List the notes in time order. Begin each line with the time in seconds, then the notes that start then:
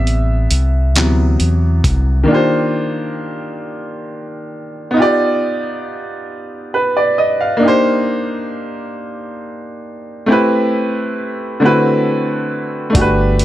Already playing: A1 C3 G3 B3 E5
0.07 closed hi-hat
0.51 C2, closed hi-hat
0.95 D2 C3 E3 F#3 B3, clap, closed hi-hat
1.40 E2, closed hi-hat
1.84 C2, kick, closed hi-hat
2.23 D#3 A#3
2.28 D4 F4
2.32 G4 C5
4.91 B3 D#4
4.97 F4 G4
5.02 D5
6.74 B4
6.97 D5
7.18 D#5
7.41 F5
7.57 A#3 D4
7.62 D#4 G4
7.68 C5
10.26 A3 C4 E4
10.31 G4 B4
11.60 D3 A3 C4 E4
11.65 F#4 B4
12.90 A3 D4
12.95 G1 F#4 G4, kick, closed hi-hat
13.01 B4
13.39 closed hi-hat